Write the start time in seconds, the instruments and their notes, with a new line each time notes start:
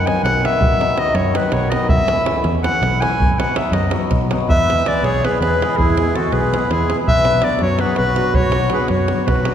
0.04 hammered dulcimer D#3 F#3 B3 D#4, clarinet G#5, davul high
0.16 davul high
0.23 fingered electric bass B1, clarinet F#5, davul high
0.35 davul high
0.41 hammered dulcimer D#3 F#3 B3 D#4
0.45 clarinet E5, davul high
0.61 fingered electric bass B1, davul low
0.79 hammered dulcimer D#3 F#3 B3 D#4, davul high
0.90 davul high
0.95 hammered dulcimer D#3 F#3 B3 D#4, clarinet D#5, davul high
1.08 davul high
1.14 fingered electric bass F#2, clarinet C#5, davul high
1.25 davul high
1.32 hammered dulcimer D#3 F#3 B3 D#4, davul high
1.37 clarinet B4
1.44 davul high
1.52 fingered electric bass B1, clarinet C#5, davul high
1.61 davul high
1.70 hammered dulcimer D#3 F#3 B3 D#4, clarinet D#5, davul high
1.89 fingered electric bass B1, clarinet E5, davul low
2.07 hammered dulcimer E3 A3 C#4 E4, davul high
2.18 davul high
2.25 hammered dulcimer E3 A3 C#4 E4, davul high
2.36 davul high
2.44 fingered electric bass E2, davul high
2.55 davul high
2.63 hammered dulcimer E3 A3 C#4 E4, clarinet F#5, davul high
2.74 davul high
2.82 fingered electric bass B1, davul high
2.93 davul high
3.01 hammered dulcimer E3 A3 C#4 E4, clarinet G#5, davul high
3.20 fingered electric bass B1, davul low
3.33 clarinet G#5
3.38 hammered dulcimer F#3 B3 D#4 F#4, clarinet F#5, davul high
3.49 davul high
3.55 hammered dulcimer F#3 B3 D#4 F#4, clarinet E5, davul high
3.72 fingered electric bass F#2, clarinet D#5, davul high
3.83 davul high
3.91 hammered dulcimer F#3 B3 D#4 F#4, davul high
4.01 davul high
4.11 fingered electric bass B1, davul high, davul low
4.21 davul high
4.30 hammered dulcimer F#3 B3 D#4 F#4, davul high
4.40 davul high
4.49 fingered electric bass E2, accordion B4, clarinet E5, davul low
4.60 davul high
4.69 hammered dulcimer G#3 B3 E4 G#4, davul high
4.86 hammered dulcimer G#3 B3 E4 G#4, accordion B4, clarinet D5, davul high
5.03 fingered electric bass B1, accordion G#4, clarinet C#5, davul high
5.15 davul high
5.23 hammered dulcimer G#3 B3 E4 G#4, accordion G#4, clarinet B4, davul high
5.40 fingered electric bass E2, accordion G#4, clarinet B4, davul high
5.61 hammered dulcimer G#3 B3 E4 G#4, davul high
5.77 fingered electric bass E2, accordion E4, clarinet G#4, davul low
5.90 davul high
5.97 hammered dulcimer G#3 B3 E4 G#4, davul high
6.15 hammered dulcimer G#3 B3 E4 G#4, accordion F#4, clarinet A4, davul high
6.32 fingered electric bass B1, accordion G#4, clarinet B4, davul high
6.43 davul high
6.51 hammered dulcimer G#3 B3 E4 G#4, davul high
6.70 fingered electric bass E2, accordion E4, clarinet G#4, davul high
6.87 hammered dulcimer G#3 B3 E4 G#4, davul high
7.08 fingered electric bass B1, accordion B4, clarinet E5, davul low
7.17 davul high
7.24 hammered dulcimer F#3 B3 D4 F#4, davul high
7.42 hammered dulcimer F#3 B3 D4 F#4, accordion B4, clarinet D5, davul high
7.59 fingered electric bass F#2, accordion F#4, clarinet C#5, davul high
7.69 davul high
7.78 hammered dulcimer F#3 B3 D4 F#4, clarinet B4, davul high
7.83 accordion G#4
7.96 fingered electric bass B1, accordion F#4, clarinet B4, davul high
8.16 hammered dulcimer F#3 B3 D4 F#4, davul high
8.34 fingered electric bass B1, accordion F#4, clarinet C#5, davul low
8.43 davul high
8.52 hammered dulcimer F#3 B3 D4 F#4, davul high
8.62 davul high
8.70 hammered dulcimer F#3 B3 D4 F#4, accordion G#4, davul high
8.74 clarinet B4
8.80 davul high
8.88 fingered electric bass F#2, accordion F#4, clarinet C#5, davul high
8.98 davul high
9.08 hammered dulcimer F#3 B3 D4 F#4, davul high
9.18 davul high
9.26 fingered electric bass B1, accordion F#4, clarinet B4, davul high, davul low
9.45 hammered dulcimer F#3 B3 D4 F#4, davul high